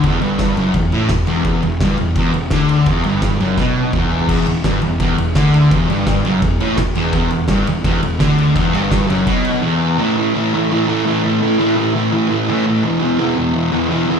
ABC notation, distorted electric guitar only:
X:1
M:4/4
L:1/8
Q:1/4=169
K:Em
V:1 name="Distorted electric guitar" clef=bass
E,, G,,2 F,, E,, A,, E,, E,, | E,, E,, G,, E,, E,, E,, D,2 | E,, G,,2 F,, B,,2 E,,2 | E,, E,, G,, E,, E,, E,, D,2 |
E,, G,,2 F,, E,, A,, E,, E,, | E,, E,, G,, E,, E,, E,, D,2 | E,, G,,2 F,, B,,2 E,,2 | [K:Amix] [A,,E,A,] [A,,E,A,] [A,,E,A,] [A,,E,A,] [A,,E,A,] [A,,E,A,] [A,,E,A,] [A,,E,A,] |
[A,,E,A,] [A,,E,A,] [A,,E,A,] [A,,E,A,] [A,,E,A,] [A,,E,A,] [A,,E,A,] [A,,E,A,] | [E,,B,,E,] [E,,B,,E,] [E,,B,,E,] [E,,B,,E,] [E,,B,,E,] [E,,B,,E,] [E,,B,,E,] [E,,B,,E,] |]